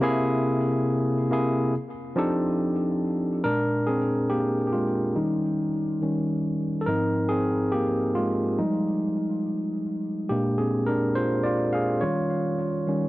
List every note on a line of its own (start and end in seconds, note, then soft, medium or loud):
0.01 1.08 C3 loud
0.01 1.08 A#3 medium
0.01 1.09 E4 medium
0.01 1.09 G#4 loud
1.30 1.73 C3 medium
1.30 1.73 A#3 medium
1.30 1.74 E4 medium
1.30 1.74 G#4 medium
2.16 3.23 F3 medium
2.16 3.23 C4 medium
2.16 3.23 D4 medium
2.16 3.23 D#4 medium
2.16 3.24 G4 medium
2.16 3.24 A4 medium
3.44 4.69 A#2 soft
3.44 4.69 G#3 soft
3.44 3.85 D4 medium
3.44 3.88 A#4 medium
3.87 4.08 C4 medium
3.87 4.06 G#4 medium
4.30 4.66 A#3 medium
4.30 4.66 G4 medium
4.67 4.73 G4 soft
4.72 4.93 G#3 soft
4.72 4.92 F4 medium
5.16 5.77 D#3 soft
5.16 6.01 G3 soft
5.16 5.77 C#4 soft
5.16 6.40 D#4 medium
6.02 6.83 D#3 soft
6.02 6.84 G3 soft
6.02 6.84 C#4 soft
6.81 6.87 A4 medium
6.86 8.12 G#2 soft
6.86 8.12 F3 soft
6.86 7.30 C4 medium
6.86 7.28 D#4 medium
6.86 7.27 A#4 medium
7.29 7.50 C4 medium
7.29 7.48 G#4 medium
7.72 8.13 A#3 medium
7.72 8.16 G4 medium
8.15 8.56 G#3 medium
8.15 8.60 F4 medium
8.58 9.19 F3 soft
8.58 9.84 G3 soft
8.58 9.20 G#3 soft
8.58 9.20 D#4 medium
10.29 11.55 A#2 soft
10.29 11.55 G#3 soft
10.29 10.57 A#3 medium
10.29 10.87 D4 soft
10.29 10.59 G4 medium
10.58 10.86 C4 soft
10.58 10.88 G#4 medium
10.86 11.15 D4 medium
10.86 11.13 A#4 medium
11.15 11.43 F4 medium
11.15 11.45 C5 medium
11.43 11.72 F4 medium
11.43 11.70 D5 medium
11.73 12.00 G#4 medium
11.73 12.02 F5 medium
12.01 12.62 D#3 soft
12.01 12.63 G3 soft
12.01 12.63 C#4 soft
12.01 13.09 F4 medium
12.01 13.09 C#5 medium
12.87 13.09 D#3 soft
12.87 13.09 G3 soft
12.87 13.09 C#4 medium